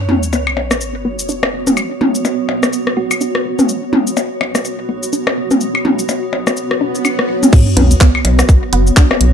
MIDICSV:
0, 0, Header, 1, 9, 480
1, 0, Start_track
1, 0, Tempo, 480000
1, 1768, Time_signature, 4, 2, 24, 8
1, 9333, End_track
2, 0, Start_track
2, 0, Title_t, "Ambient pad"
2, 0, Program_c, 0, 92
2, 0, Note_on_c, 0, 59, 67
2, 0, Note_on_c, 0, 73, 94
2, 475, Note_on_c, 0, 66, 72
2, 7528, Note_off_c, 0, 73, 0
2, 7946, Note_on_c, 0, 73, 85
2, 9333, Note_off_c, 0, 59, 0
2, 9333, Note_off_c, 0, 66, 0
2, 9333, Note_off_c, 0, 73, 0
2, 9333, End_track
3, 0, Start_track
3, 0, Title_t, "Synth pluck"
3, 0, Program_c, 1, 84
3, 2968, Note_on_c, 1, 66, 89
3, 3058, Note_off_c, 1, 66, 0
3, 3109, Note_on_c, 1, 66, 76
3, 3172, Note_off_c, 1, 66, 0
3, 9333, End_track
4, 0, Start_track
4, 0, Title_t, "Synth arpeggio sound"
4, 0, Program_c, 2, 84
4, 89, Note_on_c, 2, 59, 69
4, 140, Note_off_c, 2, 59, 0
4, 329, Note_on_c, 2, 59, 81
4, 407, Note_off_c, 2, 59, 0
4, 710, Note_on_c, 2, 59, 73
4, 731, Note_off_c, 2, 59, 0
4, 1048, Note_on_c, 2, 59, 79
4, 1100, Note_off_c, 2, 59, 0
4, 1289, Note_on_c, 2, 62, 80
4, 1341, Note_off_c, 2, 62, 0
4, 1669, Note_on_c, 2, 71, 70
4, 1706, Note_off_c, 2, 71, 0
4, 2008, Note_on_c, 2, 59, 73
4, 2060, Note_off_c, 2, 59, 0
4, 2248, Note_on_c, 2, 59, 81
4, 2326, Note_off_c, 2, 59, 0
4, 2629, Note_on_c, 2, 59, 76
4, 2651, Note_off_c, 2, 59, 0
4, 2969, Note_on_c, 2, 59, 77
4, 3020, Note_off_c, 2, 59, 0
4, 3208, Note_on_c, 2, 62, 80
4, 3260, Note_off_c, 2, 62, 0
4, 3590, Note_on_c, 2, 71, 71
4, 3626, Note_off_c, 2, 71, 0
4, 3929, Note_on_c, 2, 59, 71
4, 3980, Note_off_c, 2, 59, 0
4, 4168, Note_on_c, 2, 59, 80
4, 4246, Note_off_c, 2, 59, 0
4, 4549, Note_on_c, 2, 59, 70
4, 4571, Note_off_c, 2, 59, 0
4, 4888, Note_on_c, 2, 59, 73
4, 4940, Note_off_c, 2, 59, 0
4, 5127, Note_on_c, 2, 62, 80
4, 5180, Note_off_c, 2, 62, 0
4, 5508, Note_on_c, 2, 71, 74
4, 5545, Note_off_c, 2, 71, 0
4, 5847, Note_on_c, 2, 59, 71
4, 5900, Note_off_c, 2, 59, 0
4, 6088, Note_on_c, 2, 59, 78
4, 6166, Note_off_c, 2, 59, 0
4, 6469, Note_on_c, 2, 59, 73
4, 6491, Note_off_c, 2, 59, 0
4, 6807, Note_on_c, 2, 62, 103
4, 6886, Note_off_c, 2, 62, 0
4, 7048, Note_on_c, 2, 62, 75
4, 7100, Note_off_c, 2, 62, 0
4, 7189, Note_on_c, 2, 59, 76
4, 7211, Note_off_c, 2, 59, 0
4, 7429, Note_on_c, 2, 59, 73
4, 7466, Note_off_c, 2, 59, 0
4, 7767, Note_on_c, 2, 59, 78
4, 7820, Note_off_c, 2, 59, 0
4, 8007, Note_on_c, 2, 59, 84
4, 8086, Note_off_c, 2, 59, 0
4, 8389, Note_on_c, 2, 59, 77
4, 8411, Note_off_c, 2, 59, 0
4, 8728, Note_on_c, 2, 59, 79
4, 8780, Note_off_c, 2, 59, 0
4, 8968, Note_on_c, 2, 62, 81
4, 9020, Note_off_c, 2, 62, 0
4, 9333, End_track
5, 0, Start_track
5, 0, Title_t, "Analog synth bass"
5, 0, Program_c, 3, 38
5, 88, Note_on_c, 3, 35, 95
5, 268, Note_off_c, 3, 35, 0
5, 570, Note_on_c, 3, 35, 91
5, 749, Note_off_c, 3, 35, 0
5, 1049, Note_on_c, 3, 35, 91
5, 1229, Note_off_c, 3, 35, 0
5, 1529, Note_on_c, 3, 30, 81
5, 1708, Note_off_c, 3, 30, 0
5, 2009, Note_on_c, 3, 35, 99
5, 2189, Note_off_c, 3, 35, 0
5, 2488, Note_on_c, 3, 35, 91
5, 2668, Note_off_c, 3, 35, 0
5, 2968, Note_on_c, 3, 35, 92
5, 3148, Note_off_c, 3, 35, 0
5, 3448, Note_on_c, 3, 30, 85
5, 3628, Note_off_c, 3, 30, 0
5, 3928, Note_on_c, 3, 35, 96
5, 4108, Note_off_c, 3, 35, 0
5, 4408, Note_on_c, 3, 35, 92
5, 4588, Note_off_c, 3, 35, 0
5, 4888, Note_on_c, 3, 35, 91
5, 5068, Note_off_c, 3, 35, 0
5, 5367, Note_on_c, 3, 30, 81
5, 5548, Note_off_c, 3, 30, 0
5, 5847, Note_on_c, 3, 35, 100
5, 6028, Note_off_c, 3, 35, 0
5, 6327, Note_on_c, 3, 35, 94
5, 6508, Note_off_c, 3, 35, 0
5, 6807, Note_on_c, 3, 30, 92
5, 6988, Note_off_c, 3, 30, 0
5, 7287, Note_on_c, 3, 35, 81
5, 7468, Note_off_c, 3, 35, 0
5, 7767, Note_on_c, 3, 35, 101
5, 7948, Note_off_c, 3, 35, 0
5, 8247, Note_on_c, 3, 35, 94
5, 8428, Note_off_c, 3, 35, 0
5, 8727, Note_on_c, 3, 30, 88
5, 8908, Note_off_c, 3, 30, 0
5, 9208, Note_on_c, 3, 35, 88
5, 9333, Note_off_c, 3, 35, 0
5, 9333, End_track
6, 0, Start_track
6, 0, Title_t, "Sub drop"
6, 0, Program_c, 4, 103
6, 0, Note_on_c, 4, 60, 69
6, 1768, Note_off_c, 4, 60, 0
6, 7528, Note_on_c, 4, 60, 76
6, 9333, Note_off_c, 4, 60, 0
6, 9333, End_track
7, 0, Start_track
7, 0, Title_t, "Swell"
7, 0, Program_c, 5, 103
7, 6568, Note_on_c, 5, 60, 71
7, 7528, Note_off_c, 5, 60, 0
7, 9333, End_track
8, 0, Start_track
8, 0, Title_t, "Percussion blips"
8, 328, Note_on_c, 9, 63, 49
8, 428, Note_off_c, 9, 63, 0
8, 469, Note_on_c, 9, 76, 62
8, 568, Note_on_c, 9, 63, 51
8, 569, Note_off_c, 9, 76, 0
8, 668, Note_off_c, 9, 63, 0
8, 709, Note_on_c, 9, 63, 52
8, 809, Note_off_c, 9, 63, 0
8, 1430, Note_on_c, 9, 63, 77
8, 1530, Note_off_c, 9, 63, 0
8, 1769, Note_on_c, 9, 76, 59
8, 1869, Note_off_c, 9, 76, 0
8, 2248, Note_on_c, 9, 63, 54
8, 2348, Note_off_c, 9, 63, 0
8, 2488, Note_on_c, 9, 63, 55
8, 2588, Note_off_c, 9, 63, 0
8, 2630, Note_on_c, 9, 63, 55
8, 2730, Note_off_c, 9, 63, 0
8, 3110, Note_on_c, 9, 76, 58
8, 3210, Note_off_c, 9, 76, 0
8, 4168, Note_on_c, 9, 63, 55
8, 4268, Note_off_c, 9, 63, 0
8, 4409, Note_on_c, 9, 63, 57
8, 4409, Note_on_c, 9, 76, 58
8, 4509, Note_off_c, 9, 63, 0
8, 4509, Note_off_c, 9, 76, 0
8, 4549, Note_on_c, 9, 63, 57
8, 4649, Note_off_c, 9, 63, 0
8, 5269, Note_on_c, 9, 63, 79
8, 5369, Note_off_c, 9, 63, 0
8, 5749, Note_on_c, 9, 76, 58
8, 5849, Note_off_c, 9, 76, 0
8, 6089, Note_on_c, 9, 63, 53
8, 6189, Note_off_c, 9, 63, 0
8, 6328, Note_on_c, 9, 63, 55
8, 6428, Note_off_c, 9, 63, 0
8, 6470, Note_on_c, 9, 63, 56
8, 6570, Note_off_c, 9, 63, 0
8, 7048, Note_on_c, 9, 76, 59
8, 7148, Note_off_c, 9, 76, 0
8, 8007, Note_on_c, 9, 63, 57
8, 8107, Note_off_c, 9, 63, 0
8, 8149, Note_on_c, 9, 76, 69
8, 8247, Note_on_c, 9, 63, 54
8, 8249, Note_off_c, 9, 76, 0
8, 8347, Note_off_c, 9, 63, 0
8, 8388, Note_on_c, 9, 63, 55
8, 8488, Note_off_c, 9, 63, 0
8, 9108, Note_on_c, 9, 63, 84
8, 9208, Note_off_c, 9, 63, 0
8, 9333, End_track
9, 0, Start_track
9, 0, Title_t, "Drums"
9, 87, Note_on_c, 9, 45, 96
9, 187, Note_off_c, 9, 45, 0
9, 229, Note_on_c, 9, 69, 47
9, 327, Note_off_c, 9, 69, 0
9, 327, Note_on_c, 9, 69, 41
9, 427, Note_off_c, 9, 69, 0
9, 708, Note_on_c, 9, 69, 50
9, 709, Note_on_c, 9, 37, 65
9, 807, Note_off_c, 9, 69, 0
9, 807, Note_on_c, 9, 69, 41
9, 809, Note_off_c, 9, 37, 0
9, 907, Note_off_c, 9, 69, 0
9, 1189, Note_on_c, 9, 69, 54
9, 1288, Note_off_c, 9, 69, 0
9, 1288, Note_on_c, 9, 69, 39
9, 1388, Note_off_c, 9, 69, 0
9, 1430, Note_on_c, 9, 37, 66
9, 1530, Note_off_c, 9, 37, 0
9, 1669, Note_on_c, 9, 69, 54
9, 1670, Note_on_c, 9, 45, 77
9, 1767, Note_off_c, 9, 69, 0
9, 1767, Note_on_c, 9, 69, 40
9, 1770, Note_off_c, 9, 45, 0
9, 1867, Note_off_c, 9, 69, 0
9, 2010, Note_on_c, 9, 45, 89
9, 2110, Note_off_c, 9, 45, 0
9, 2149, Note_on_c, 9, 69, 45
9, 2248, Note_off_c, 9, 69, 0
9, 2248, Note_on_c, 9, 69, 41
9, 2348, Note_off_c, 9, 69, 0
9, 2629, Note_on_c, 9, 69, 48
9, 2630, Note_on_c, 9, 37, 60
9, 2728, Note_off_c, 9, 69, 0
9, 2728, Note_on_c, 9, 69, 41
9, 2730, Note_off_c, 9, 37, 0
9, 2828, Note_off_c, 9, 69, 0
9, 2870, Note_on_c, 9, 37, 59
9, 2970, Note_off_c, 9, 37, 0
9, 3109, Note_on_c, 9, 69, 51
9, 3208, Note_off_c, 9, 69, 0
9, 3208, Note_on_c, 9, 69, 39
9, 3308, Note_off_c, 9, 69, 0
9, 3350, Note_on_c, 9, 37, 62
9, 3450, Note_off_c, 9, 37, 0
9, 3588, Note_on_c, 9, 69, 53
9, 3590, Note_on_c, 9, 45, 79
9, 3688, Note_off_c, 9, 69, 0
9, 3688, Note_on_c, 9, 69, 39
9, 3690, Note_off_c, 9, 45, 0
9, 3788, Note_off_c, 9, 69, 0
9, 3928, Note_on_c, 9, 45, 93
9, 4028, Note_off_c, 9, 45, 0
9, 4069, Note_on_c, 9, 69, 43
9, 4168, Note_off_c, 9, 69, 0
9, 4168, Note_on_c, 9, 69, 39
9, 4268, Note_off_c, 9, 69, 0
9, 4549, Note_on_c, 9, 37, 61
9, 4549, Note_on_c, 9, 69, 47
9, 4648, Note_off_c, 9, 69, 0
9, 4648, Note_on_c, 9, 69, 41
9, 4649, Note_off_c, 9, 37, 0
9, 4748, Note_off_c, 9, 69, 0
9, 5028, Note_on_c, 9, 69, 49
9, 5127, Note_off_c, 9, 69, 0
9, 5127, Note_on_c, 9, 69, 39
9, 5227, Note_off_c, 9, 69, 0
9, 5269, Note_on_c, 9, 37, 65
9, 5369, Note_off_c, 9, 37, 0
9, 5508, Note_on_c, 9, 69, 51
9, 5510, Note_on_c, 9, 45, 77
9, 5607, Note_off_c, 9, 69, 0
9, 5607, Note_on_c, 9, 69, 36
9, 5610, Note_off_c, 9, 45, 0
9, 5707, Note_off_c, 9, 69, 0
9, 5849, Note_on_c, 9, 45, 86
9, 5949, Note_off_c, 9, 45, 0
9, 5989, Note_on_c, 9, 69, 44
9, 6087, Note_off_c, 9, 69, 0
9, 6087, Note_on_c, 9, 69, 39
9, 6187, Note_off_c, 9, 69, 0
9, 6468, Note_on_c, 9, 69, 47
9, 6470, Note_on_c, 9, 37, 59
9, 6567, Note_off_c, 9, 69, 0
9, 6567, Note_on_c, 9, 69, 38
9, 6570, Note_off_c, 9, 37, 0
9, 6667, Note_off_c, 9, 69, 0
9, 6710, Note_on_c, 9, 37, 59
9, 6810, Note_off_c, 9, 37, 0
9, 6949, Note_on_c, 9, 69, 49
9, 7048, Note_off_c, 9, 69, 0
9, 7048, Note_on_c, 9, 69, 36
9, 7148, Note_off_c, 9, 69, 0
9, 7188, Note_on_c, 9, 37, 63
9, 7288, Note_off_c, 9, 37, 0
9, 7429, Note_on_c, 9, 45, 74
9, 7429, Note_on_c, 9, 69, 48
9, 7527, Note_on_c, 9, 36, 118
9, 7528, Note_off_c, 9, 69, 0
9, 7528, Note_on_c, 9, 49, 99
9, 7528, Note_on_c, 9, 69, 44
9, 7529, Note_off_c, 9, 45, 0
9, 7627, Note_off_c, 9, 36, 0
9, 7627, Note_off_c, 9, 49, 0
9, 7627, Note_off_c, 9, 69, 0
9, 7767, Note_on_c, 9, 42, 88
9, 7767, Note_on_c, 9, 45, 96
9, 7867, Note_off_c, 9, 42, 0
9, 7867, Note_off_c, 9, 45, 0
9, 7909, Note_on_c, 9, 42, 35
9, 7909, Note_on_c, 9, 69, 50
9, 8007, Note_on_c, 9, 36, 119
9, 8008, Note_off_c, 9, 69, 0
9, 8008, Note_on_c, 9, 39, 95
9, 8008, Note_on_c, 9, 69, 45
9, 8009, Note_off_c, 9, 42, 0
9, 8107, Note_off_c, 9, 36, 0
9, 8108, Note_off_c, 9, 39, 0
9, 8108, Note_off_c, 9, 69, 0
9, 8247, Note_on_c, 9, 42, 95
9, 8347, Note_off_c, 9, 42, 0
9, 8388, Note_on_c, 9, 37, 68
9, 8390, Note_on_c, 9, 69, 54
9, 8487, Note_on_c, 9, 36, 122
9, 8488, Note_off_c, 9, 37, 0
9, 8488, Note_off_c, 9, 69, 0
9, 8488, Note_on_c, 9, 69, 47
9, 8587, Note_off_c, 9, 36, 0
9, 8588, Note_off_c, 9, 69, 0
9, 8727, Note_on_c, 9, 42, 92
9, 8827, Note_off_c, 9, 42, 0
9, 8868, Note_on_c, 9, 69, 57
9, 8967, Note_off_c, 9, 69, 0
9, 8967, Note_on_c, 9, 36, 114
9, 8967, Note_on_c, 9, 39, 99
9, 8967, Note_on_c, 9, 69, 45
9, 9067, Note_off_c, 9, 36, 0
9, 9067, Note_off_c, 9, 39, 0
9, 9067, Note_off_c, 9, 69, 0
9, 9108, Note_on_c, 9, 37, 73
9, 9207, Note_on_c, 9, 42, 92
9, 9208, Note_off_c, 9, 37, 0
9, 9307, Note_off_c, 9, 42, 0
9, 9333, End_track
0, 0, End_of_file